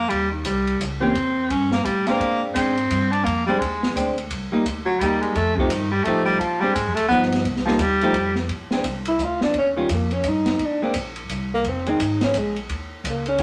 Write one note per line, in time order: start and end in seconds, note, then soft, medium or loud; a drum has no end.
0.00 0.10 A#3 loud
0.09 0.44 D#2 medium
0.09 0.31 G3 medium
0.09 kick soft
0.09 ride medium
0.31 0.47 D#3 soft
0.45 0.79 C2 medium
0.45 0.81 G3 medium
0.45 kick soft
0.45 hi-hat pedal medium
0.45 ride medium
0.67 ride soft
0.80 1.14 C#2 medium
0.80 kick soft
0.80 hi-hat pedal medium
0.80 ride medium
1.00 1.13 E3 medium
1.00 1.14 A#3 medium
1.00 1.51 C4 medium
1.00 1.14 C#4 medium
1.00 1.14 G4 medium
1.15 1.49 E2 medium
1.15 kick soft
1.15 ride medium
1.50 1.84 G2 medium
1.50 1.72 C#4 medium
1.50 kick soft
1.50 ride medium
1.72 1.86 A#3 medium
1.72 snare soft
1.85 2.19 A2 medium
1.85 2.08 G3 medium
1.85 kick soft
1.85 hi-hat pedal soft
1.85 ride medium
2.07 2.53 G#3 medium
2.07 2.42 A#3 loud
2.07 2.54 C4 medium
2.07 2.54 D4 medium
2.07 snare soft
2.07 ride soft
2.20 2.54 A#2 medium
2.20 kick soft
2.20 ride medium
2.54 2.89 G#2 medium
2.54 2.75 G#3 medium
2.54 3.13 C4 medium
2.54 2.75 C4 medium
2.54 2.75 D4 medium
2.54 kick soft
2.54 hi-hat pedal medium
2.54 ride medium
2.77 ride soft
2.90 3.24 G2 medium
2.90 kick soft
2.90 hi-hat pedal soft
2.90 ride medium
3.11 3.26 D4 loud
3.11 ride soft
3.24 3.59 F2 medium
3.24 3.46 A#3 medium
3.24 kick soft
3.24 ride medium
3.46 3.60 G3 medium
3.46 3.60 G#3 medium
3.46 3.60 C4 medium
3.46 3.60 D4 medium
3.59 3.94 D#2 medium
3.59 3.94 G#3 medium
3.59 kick soft
3.59 ride medium
3.83 snare soft
3.95 4.29 D2 medium
3.95 4.15 G#3 medium
3.95 4.15 C4 medium
3.95 4.15 D4 medium
3.95 kick soft
3.95 hi-hat pedal soft
3.95 ride medium
4.18 ride soft
4.30 4.50 C2 medium
4.30 kick soft
4.30 ride medium
4.52 4.64 G3 medium
4.52 4.64 A#3 medium
4.52 4.64 D#4 medium
4.65 4.99 D2 medium
4.65 kick soft
4.65 hi-hat pedal medium
4.65 ride medium
4.85 5.02 F#3 loud
5.00 5.34 D#2 medium
5.00 5.23 G3 medium
5.00 5.36 G3 medium
5.00 5.36 A#3 medium
5.00 5.36 D#4 medium
5.00 kick soft
5.00 hi-hat pedal soft
5.00 ride medium
5.21 5.37 G#3 medium
5.21 ride soft
5.35 5.69 F2 medium
5.35 5.58 A3 medium
5.35 kick soft
5.35 ride medium
5.56 5.72 C3 medium
5.56 5.70 F3 medium
5.56 5.70 A3 medium
5.56 5.70 D#4 medium
5.56 5.70 G4 medium
5.56 kick soft
5.70 6.04 G2 medium
5.70 5.91 D#3 medium
5.70 kick soft
5.70 hi-hat pedal medium
5.70 ride medium
5.92 6.05 G3 medium
6.04 6.39 A2 medium
6.04 6.41 F3 medium
6.04 6.25 A3 loud
6.04 6.41 A3 medium
6.04 6.41 D#4 medium
6.04 kick soft
6.04 ride soft
6.08 6.41 G4 medium
6.25 6.41 G3 medium
6.39 6.74 A#2 medium
6.39 6.62 F3 medium
6.39 kick soft
6.39 ride medium
6.60 6.76 G3 medium
6.60 6.74 G#3 medium
6.60 6.74 C4 medium
6.60 6.74 D4 medium
6.74 6.87 G#2 medium
6.74 6.96 G#3 medium
6.74 kick soft
6.74 hi-hat pedal medium
6.74 ride medium
6.87 6.98 F2 medium
6.95 7.09 D2 medium
6.95 7.08 A3 medium
6.95 ride medium
7.09 7.44 G2 medium
7.09 7.45 F3 medium
7.09 7.22 B3 medium
7.09 7.45 B3 medium
7.09 7.45 D#4 medium
7.09 kick soft
7.09 hi-hat pedal medium
7.22 snare soft
7.32 snare soft
7.32 ride soft
7.45 7.78 C2 medium
7.45 kick soft
7.45 ride medium
7.56 snare soft
7.66 7.82 F3 medium
7.66 7.78 G3 medium
7.66 7.79 A#3 medium
7.66 7.79 D#4 medium
7.66 snare soft
7.79 8.13 D#2 loud
7.79 8.36 G3 medium
7.79 kick soft
7.79 hi-hat pedal medium
7.79 ride medium
8.01 8.14 F3 medium
8.01 8.14 A3 medium
8.01 8.14 D#4 medium
8.01 8.14 G4 medium
8.01 ride soft
8.14 8.48 F2 medium
8.14 kick soft
8.14 ride medium
8.35 snare soft
8.48 8.83 A#1 medium
8.48 kick soft
8.48 ride soft
8.71 8.83 G#3 soft
8.71 8.84 C4 medium
8.71 8.84 D4 medium
8.71 snare soft
8.84 9.18 C2 medium
8.84 kick soft
8.84 hi-hat pedal medium
8.84 ride medium
9.05 9.25 E4 medium
9.05 ride medium
9.18 9.53 D2 medium
9.18 kick soft
9.18 hi-hat pedal medium
9.24 9.42 F4 medium
9.41 9.54 D4 medium
9.41 snare soft
9.54 9.88 D#2 medium
9.54 kick soft
9.54 ride soft
9.58 9.70 C#4 medium
9.76 9.88 D#3 medium
9.76 9.88 G3 medium
9.76 9.88 C#4 medium
9.76 9.88 F4 medium
9.89 10.23 F2 medium
9.89 kick soft
9.89 hi-hat pedal medium
9.89 ride medium
9.94 10.14 A#3 medium
10.11 10.30 C#4 medium
10.11 ride soft
10.24 10.58 G2 medium
10.24 kick soft
10.24 hi-hat pedal soft
10.24 ride medium
10.28 10.66 D#4 medium
10.46 snare soft
10.46 ride soft
10.59 10.93 A#2 medium
10.59 kick soft
10.59 ride medium
10.65 10.82 D4 medium
10.82 10.93 G#3 medium
10.82 10.94 A#3 medium
10.82 10.94 C4 medium
10.82 10.94 D4 medium
10.94 11.28 A#1 medium
10.94 kick soft
10.94 hi-hat pedal medium
10.94 ride medium
11.16 ride soft
11.29 11.63 C2 medium
11.29 kick soft
11.29 hi-hat pedal soft
11.29 ride medium
11.54 11.71 A#3 loud
11.64 11.97 F1 medium
11.64 kick soft
11.64 ride medium
11.69 11.90 C4 medium
11.86 11.98 D#3 medium
11.86 11.98 G#3 medium
11.86 11.99 C4 medium
11.86 12.22 D#4 medium
11.86 ride soft
11.99 12.33 G#1 medium
11.99 kick soft
11.99 hi-hat pedal medium
11.99 ride medium
12.21 12.39 C#4 medium
12.21 snare soft
12.21 ride soft
12.34 12.67 A#1 medium
12.34 kick soft
12.34 hi-hat pedal medium
12.34 ride medium
12.38 12.57 G#3 medium
12.56 ride soft
12.69 13.03 D#2 medium
12.69 kick soft
12.69 ride medium
13.04 13.37 C#2 medium
13.04 kick soft
13.04 hi-hat pedal medium
13.04 ride medium
13.09 13.27 A#3 medium
13.26 13.43 C#4 medium
13.26 ride soft
13.38 13.43 F2 medium
13.38 13.43 D#3 medium
13.38 13.43 G3 medium
13.38 kick soft
13.38 hi-hat pedal medium
13.38 ride medium